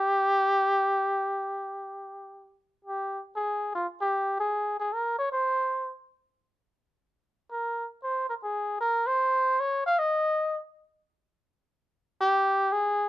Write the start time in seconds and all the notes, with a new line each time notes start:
Already playing: G4
2.84 G4
3.36 G#4
3.75 F4
4.01 G4
4.40 G#4
4.80 G#4
4.93 A#4
5.18 C#5
5.32 C5
7.51 A#4
8.03 C5
8.29 A#4
8.43 G#4
8.80 A#4
9.07 C5
9.60 C#5
9.86 F5
9.98 D#5
12.21 G4
12.72 G#4